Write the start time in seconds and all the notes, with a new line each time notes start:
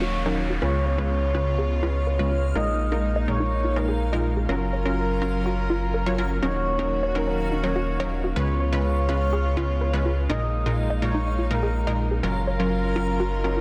Already playing: D#1 D#3 A#3 C#4 F#4 C#5 F5, downlifter
0.01 F#4
0.26 F#3 C#4 D#4 A#4 C#5
0.50 F#4
0.62 C#2 C#3 G#3 B3 C#4 F4 B4 C#5
0.86 C#5
0.98 C#3 G#3 C#4 F4 B4
1.34 C#3 G#3 C#4 F4 B4
1.59 G#4
1.83 C#3 G#3 C#4 F4 B4
2.07 B4
2.19 C#3 G#3 C#4 F4 B4
2.31 F4
2.55 A#1 A#2 G#3 A#3 D#4 F4 A#4 D#5
2.92 A#2 G#3 D#4 F4 A#4
3.16 D#5
3.28 A#2 G#3 D#4 F4 A#4 C#5
3.40 D#4
3.64 F4
3.76 A#2 G#3 D#4 F4 A#4
3.88 G#4
4.13 A#2 G#3 D#4 F4 A#4 D#5
4.37 G#4
4.49 F#1 F#3 C#4 F4 A#4
4.73 C#5
4.85 F#3 C#4 F4 A#4
5.22 F#3 C#4 F4 A#4
5.46 F#4
5.70 F4
5.94 A#4
6.06 F#3 C#4 F4 C#5
6.18 F#3 C#4 F4 A#4
6.42 D#1 D#3 F#3 A#3 C#4 D#4 F#4 A#4 C#5
6.79 F#3 C#4 D#4 A#4
7.03 C#5
7.15 F#3 C#4 D#4 A#4
7.27 C#4
7.51 D#4
7.63 F#3 C#4 D#4 A#4 C#5
7.76 F#4
8.00 F#3 C#4 D#4 A#4 C#5
8.24 F#4
8.36 C#2 C#3 G#3 B3 C#4 F4 B4 C#5
8.60 C#5
8.73 C#3 G#3 C#4 F4 B4
9.09 C#3 G#3 C#4 F4 B4
9.33 G#4
9.57 C#3 G#3 C#4 F4 B4
9.81 B4
9.93 C#3 G#3 C#4 F4 B4
10.05 F4
10.29 A#1 A#2 G#3 A#3 D#4 F4 A#4 D#5
10.66 A#2 G#3 D#4 F4 A#4
10.90 D#5
11.02 A#2 G#3 D#4 F4 A#4 C#5
11.14 D#4
11.39 F4
11.51 A#2 G#3 D#4 F4 A#4
11.63 G#4
11.87 A#2 G#3 D#4 F4 A#4 D#5
12.11 G#4
12.23 F#1 F#3 C#4 F4 A#4
12.47 C#5
12.60 F#3 C#4 F4 A#4
12.96 F#3 C#4 F4 A#4
13.20 F#4, swell
13.44 F#3 C#4 F4 F#4 A#4
13.56 F4